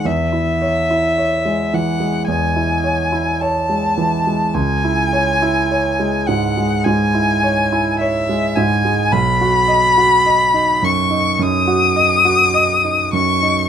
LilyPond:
<<
  \new Staff \with { instrumentName = "Violin" } { \time 4/4 \key cis \minor \tempo 4 = 52 e''4. fis''8 gis''4 a''4 | gis''4. fis''8 gis''4 e''8 gis''8 | b''4. cis'''8 dis'''4. cis'''8 | }
  \new Staff \with { instrumentName = "Grand piano" } { \time 4/4 \key cis \minor e,16 e'16 cis''16 e'16 cis''16 gis16 e16 gis16 e,16 e'16 cis''16 e'16 cis''16 gis16 e16 gis16 | cis,16 e'16 cis''16 e'16 cis''16 gis16 gis,16 gis16 gis,16 e'16 cis''16 e'16 cis''16 gis16 gis,16 gis16 | b,,16 fis'16 dis''16 fis'16 dis''16 dis'16 fis,16 dis'16 fis,16 fis'16 dis''16 fis'16 dis''16 dis'16 fis,16 dis'16 | }
>>